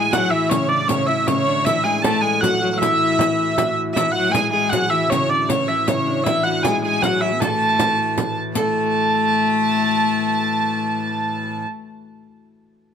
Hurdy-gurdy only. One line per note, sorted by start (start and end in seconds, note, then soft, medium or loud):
0.00 0.13 G#5 medium
0.13 0.30 F#5 loud
0.30 0.49 E5 medium
0.49 0.69 C#5 loud
0.69 0.88 D5 medium
0.88 1.08 C#5 medium
1.07 1.27 E5 medium
1.27 1.65 C#5 loud
1.65 1.85 E5 loud
1.84 2.02 G#5 loud
2.02 2.21 A5 loud
2.21 2.41 G#5 loud
2.41 2.73 F#5 loud
2.73 2.81 F#5 medium
2.78 3.76 E5 loud
3.94 4.13 E5 loud
4.12 4.33 F#5 loud
4.32 4.50 G#5 loud
4.50 4.70 G#5 loud
4.70 4.91 F#5 loud
4.90 5.10 E5 medium
5.10 5.30 C#5 loud
5.30 5.49 D5 loud
5.49 5.69 C#5 medium
5.68 5.88 E5 medium
5.88 6.24 C#5 medium
6.24 6.44 E5 loud
6.44 6.64 F#5 medium
6.63 6.83 G#5 medium
6.83 7.03 G#5 medium
7.03 7.22 F#5 loud
7.21 7.41 E5 medium
7.40 8.37 A5 loud
8.56 11.62 A5 loud